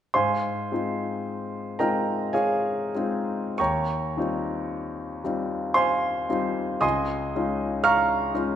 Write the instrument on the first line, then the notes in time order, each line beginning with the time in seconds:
grand piano
0.14 G#2 C5 F5 G#5 C6
0.72 G#3 C4 D#4 F4
1.79 G#3 C4 D#4 F4 A#4 D#5 G5 A#5
2.33 G#4 C#5 F5 G#5
2.95 G#3 C4 D#4 F4
3.58 D#2 C#5 G5 A#5 C#6
4.17 G3 C4 D#4 F4
5.24 G3 C4 D#4 F4
5.74 C5 F5 G#5 C6
6.29 G3 C4 D#4 F4
6.81 C#2 D#5 G#5 C6 D#6
7.36 G#3 C#4 D#4 F4
7.84 F5 A#5 C#6 F6
8.34 G#3 C#4 D#4 F4